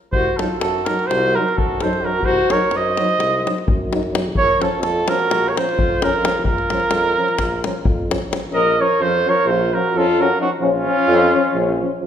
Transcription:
0.12 tuba C2, flugelhorn F#4 C5, davul low
0.37 trombone F#3, flugelhorn F4 A4, davul high
0.42 euphonium D#4
0.59 tuba F#2, flugelhorn F#4 A4, davul high
0.85 trombone F#3, euphonium D#4, flugelhorn F#4 A#4, davul high
0.99 davul high
1.07 tuba C2, flugelhorn F#4 C5, davul high
1.35 trombone F#3, euphonium D#4, flugelhorn F#4 A#4
1.48 davul high
1.54 tuba F#2, flugelhorn F#4 A4, davul low
1.80 trombone F#3, euphonium D#4, flugelhorn A4 C5, davul high
1.93 davul high
2.01 trombone F#3, flugelhorn F#4 A#4
2.06 euphonium D#4
2.23 tuba C2, flugelhorn F#4 C5, davul low
2.50 trombone F#3, euphonium D#4, flugelhorn A#4 C#5, davul high
2.71 tuba F#2, davul high
2.76 flugelhorn C5 D#5
2.97 trombone F#3, euphonium D#4, davul high
3.09 davul high
3.17 tuba C2, davul high
3.45 trombone F#3, euphonium D#4, davul high
3.58 davul high
3.67 tuba F#2, davul low
3.91 trombone F#3, euphonium D#4, davul high
4.03 davul high
4.12 trombone F#3, euphonium D#4, davul high
4.32 tuba A#1, davul low
4.37 flugelhorn A#4 C#5
4.60 trombone F3, euphonium C#4, flugelhorn A4, davul high
4.64 flugelhorn F4
4.79 tuba F2, flugelhorn A4, davul high
4.87 flugelhorn F4
5.06 trombone F3, euphonium C#4, flugelhorn A#4, davul high
5.13 flugelhorn F#4
5.19 davul high
5.28 tuba A#1, davul high
5.49 flugelhorn A#4 C#5
5.55 trombone F3, euphonium C#4, flugelhorn C5, davul high
5.60 flugelhorn F4
5.69 davul high
5.77 tuba F2, davul low
6.02 trombone F3, euphonium C#4, flugelhorn F4 A#4, davul high
6.13 davul high
6.22 trombone F3, euphonium C#4, davul high
6.42 tuba A#1, flugelhorn A#4, davul low
6.48 flugelhorn F4
6.58 davul high
6.70 trombone F3, euphonium C#4, davul high
6.80 davul high
6.91 tuba F2, davul high
7.19 trombone F3, euphonium C#4
7.28 davul high
7.38 tuba A#1, davul high, davul low
7.64 trombone F3, euphonium C#4, davul high
7.85 tuba F2, davul low
8.09 trombone F3, euphonium C#4, davul high
8.22 davul high
8.31 trombone F3, euphonium C#4, davul high
8.51 tuba A#1, trombone F3, euphonium C#4, flugelhorn A#4 D#5
8.78 trombone F3, euphonium C#4, flugelhorn A#4 C#5
8.99 tuba F2, trombone F3, euphonium C#4, flugelhorn F4 C5
9.26 trombone F3, euphonium C#4, flugelhorn A#4 C#5
9.46 tuba A#1, euphonium C#4, flugelhorn C5
9.50 trombone F3, flugelhorn F4
9.73 trombone F3, euphonium C#4, flugelhorn F#4 A#4
9.95 tuba F2, trombone F3, euphonium C#4, flugelhorn F4 A4
10.18 trombone F3, euphonium C#4, flugelhorn F#4 A#4
10.39 trombone F3, euphonium C#4, flugelhorn D#4 F#4
10.59 tuba A#1, trombone F3, flugelhorn C#4 F4, euphonium C#4
10.85 trombone F3, euphonium C#4
11.07 tuba F2, trombone F3, euphonium C#4
11.34 trombone F3, euphonium C#4
11.54 tuba A#1, trombone F3, euphonium C#4
11.80 trombone F3, euphonium C#4
12.01 tuba F2, trombone F3

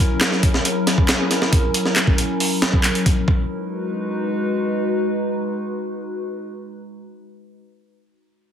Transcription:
Already playing: ambient pad F#3 C#4 E4 A#4
0.21 snare, clap, closed hi-hat
0.32 snare
0.43 kick, closed hi-hat
0.54 snare
0.65 closed hi-hat
0.87 snare, closed hi-hat
0.98 kick
1.09 snare, clap, closed hi-hat
1.31 snare, closed hi-hat
1.42 snare
1.53 kick, closed hi-hat
1.74 closed hi-hat
1.85 snare
1.96 snare, clap, closed hi-hat
2.07 kick
2.18 closed hi-hat
2.40 open hi-hat
2.62 snare, closed hi-hat
2.73 kick
2.84 clap, closed hi-hat
2.95 closed hi-hat
3.06 kick, closed hi-hat
3.27 ambient pad G#3 D#4 F#4 B4, kick

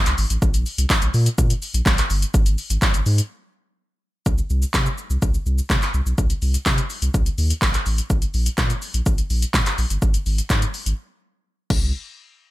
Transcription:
0.06 sub bass C2, clap, closed hi-hat, shaker
0.18 sub bass G#1, open hi-hat, shaker
0.30 sub bass A1, closed hi-hat, shaker
0.42 sub bass A#1, kick, shaker
0.54 closed hi-hat, shaker
0.66 open hi-hat, shaker
0.78 sub bass C2, closed hi-hat, shaker
0.90 kick, snare, clap, shaker
1.02 sub bass A#1, closed hi-hat, shaker
1.14 sub bass A#2, open hi-hat, shaker
1.26 closed hi-hat, shaker
1.38 sub bass A#2, kick, shaker
1.50 closed hi-hat, shaker
1.62 open hi-hat, shaker
1.74 sub bass A#1, closed hi-hat, shaker
1.86 sub bass A#1, kick, snare, clap, shaker
1.98 clap, closed hi-hat, shaker
2.10 sub bass G1, open hi-hat, shaker
2.22 closed hi-hat, shaker
2.34 sub bass G#1, kick, shaker
2.46 closed hi-hat, shaker
2.58 open hi-hat, shaker
2.70 sub bass G#1, closed hi-hat, shaker
2.82 kick, snare, clap, shaker
2.94 sub bass G#1, closed hi-hat, shaker
3.06 sub bass G#2, open hi-hat, shaker
3.18 closed hi-hat, shaker
4.26 sub bass C2, kick, shaker
4.38 shaker
4.50 sub bass C2, shaker
4.62 shaker
4.74 sub bass C3, kick, snare, clap, shaker
4.86 shaker
4.98 shaker
5.10 sub bass C2, shaker
5.22 sub bass C2, kick, shaker
5.34 shaker
5.46 sub bass C2, shaker
5.58 shaker
5.70 sub bass C3, kick, snare, clap, shaker
5.82 clap, shaker
5.94 sub bass C2, shaker
6.06 sub bass B1, shaker
6.18 sub bass C2, kick, shaker
6.30 closed hi-hat, shaker
6.42 sub bass C2, open hi-hat, shaker
6.54 closed hi-hat, shaker
6.66 sub bass C3, kick, snare, clap, shaker
6.78 closed hi-hat, shaker
6.90 open hi-hat, shaker
7.02 sub bass C2, closed hi-hat, shaker
7.14 sub bass C2, kick, shaker
7.26 closed hi-hat, shaker
7.38 sub bass D#2, open hi-hat, shaker
7.50 closed hi-hat, shaker
7.62 sub bass A#1, kick, snare, clap, shaker
7.74 clap, closed hi-hat, shaker
7.86 sub bass A1, open hi-hat, shaker
7.98 closed hi-hat, shaker
8.10 sub bass A#1, kick, shaker
8.22 closed hi-hat, shaker
8.34 sub bass A#1, open hi-hat, shaker
8.46 closed hi-hat, shaker
8.58 sub bass A#2, kick, snare, clap, shaker
8.70 closed hi-hat, shaker
8.82 open hi-hat, shaker
8.94 sub bass A#1, closed hi-hat, shaker
9.06 sub bass A#1, kick, shaker
9.18 closed hi-hat, shaker
9.30 sub bass A#1, open hi-hat, shaker
9.42 closed hi-hat, shaker
9.54 sub bass A#2, kick, snare, clap, shaker
9.66 clap, closed hi-hat, shaker
9.78 sub bass A#1, open hi-hat, shaker
9.90 sub bass G1, closed hi-hat, shaker
10.02 sub bass G#1, kick, shaker
10.14 closed hi-hat, shaker
10.26 sub bass G#1, open hi-hat, shaker
10.38 closed hi-hat, shaker
10.50 sub bass G#2, kick, snare, clap, shaker
10.62 closed hi-hat, shaker
10.74 open hi-hat, shaker
10.86 sub bass G#1, closed hi-hat, shaker
11.70 sub bass C2, kick, crash

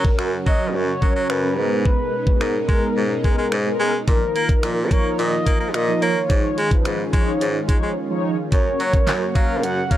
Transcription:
Already playing: supersaw synth C#3 F#3 C#4 F#4, soft synth lead A#4
0.05 analog polysynth F#3 C#4 A#4, kick
0.19 baritone saxophone F#2, finger snap
0.46 analog polysynth F#3 C#4 A#4, baritone saxophone F#3, soft synth lead D#5, kick
0.67 soft synth lead D#5
0.74 baritone saxophone F#2, soft synth lead C#5
1.02 analog polysynth F#3 C#4 A#4, baritone saxophone F#3, kick
1.16 baritone saxophone F#3
1.30 baritone saxophone F#2, soft synth lead B4, finger snap
1.43 analog polysynth F#3 C#4 A#4
1.57 baritone saxophone G#2, supersaw synth B2 G#3 D#4, analog polysynth G#3 B3 A#4
1.85 soft synth lead B4, kick
2.27 analog polysynth G#3 B3 F#4, kick
2.41 baritone saxophone G#2, soft synth lead A#4, finger snap
2.69 analog polysynth G#3 B3 A#4, baritone saxophone G#3, kick
2.96 baritone saxophone G#2
3.24 analog polysynth G#3 B3 A#4, baritone saxophone G#3, kick
3.38 baritone saxophone G#3
3.52 baritone saxophone G#2, finger snap
3.66 analog polysynth G#3 B3 A#4
3.80 baritone saxophone G#3
4.07 baritone saxophone A#2, supersaw synth D#3 F3 A#3 F4, analog polysynth F3 D#4 A#4, soft synth lead A#4, kick, closed hi-hat
4.35 baritone saxophone A#3, closed hi-hat
4.49 analog polysynth F3 D#4 A#4, kick, closed hi-hat
4.63 baritone saxophone A#2, finger snap, closed hi-hat
4.91 analog polysynth F3 D#4 A#4, baritone saxophone A#3, soft synth lead C#5, kick, closed hi-hat
5.19 baritone saxophone A#2, soft synth lead D#5, closed hi-hat
5.46 analog polysynth F3 D#4 A#4, baritone saxophone A#3, kick, closed hi-hat
5.60 baritone saxophone A#3
5.74 baritone saxophone A#2, soft synth lead D#5, finger snap, closed hi-hat
5.88 analog polysynth F3 D#4 A#4
6.02 baritone saxophone A#3, soft synth lead C#5, closed hi-hat
6.30 baritone saxophone G#2, supersaw synth D#3 G#3 C#4, analog polysynth F3 D#4 C#5, kick, closed hi-hat
6.58 baritone saxophone G#3, closed hi-hat
6.71 analog polysynth F3 D#4 B4, kick, closed hi-hat
6.85 baritone saxophone G#2, finger snap, closed hi-hat
7.13 analog polysynth F3 D#4 C#5, baritone saxophone G#3, kick, closed hi-hat
7.41 baritone saxophone G#2, closed hi-hat
7.68 analog polysynth F3 D#4 C#5, baritone saxophone G#3, kick, closed hi-hat
7.83 baritone saxophone G#3
8.10 analog polysynth F3 D#4 C#5
8.52 baritone saxophone F#2, supersaw synth C#3 F#3 A#3 F#4, analog polysynth F#3 C#4 A#4, soft synth lead C#5, kick, closed hi-hat
8.80 baritone saxophone F#3, closed hi-hat
8.94 analog polysynth F#3 C#4 A#4, kick, closed hi-hat
9.07 baritone saxophone F#2, snare, clap, closed hi-hat
9.35 analog polysynth F#3 C#4 A#4, baritone saxophone F#3, soft synth lead F5, kick, closed hi-hat
9.63 baritone saxophone F#2, soft synth lead F#5, closed hi-hat
9.91 analog polysynth F#3 C#4 A#4, baritone saxophone F#3, soft synth lead F5, kick, closed hi-hat

